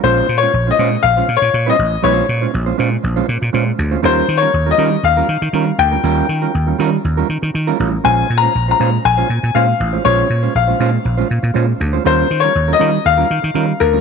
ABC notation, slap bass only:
X:1
M:4/4
L:1/16
Q:1/4=120
K:Bbdor
V:1 name="Slap bass" clef=bass
B,,,2 B,,2 B,,,2 B,,2 B,,,2 B,, B,, B,,2 =A,,,2 | B,,,2 B,,2 B,,,2 B,,2 B,,,2 B,, B,, B,,2 =D,,2 | E,,2 E,2 E,,2 E,2 E,,2 E, E, E,2 =D,,2 | E,,2 E,2 E,,2 E,2 E,,2 E, E, E,2 =A,,,2 |
B,,,2 B,,2 B,,,2 B,,2 B,,,2 B,, B,, B,,2 =A,,,2 | B,,,2 B,,2 B,,,2 B,,2 B,,,2 B,, B,, B,,2 =D,,2 | E,,2 E,2 E,,2 E,2 E,,2 E, E, E,2 =D,,2 |]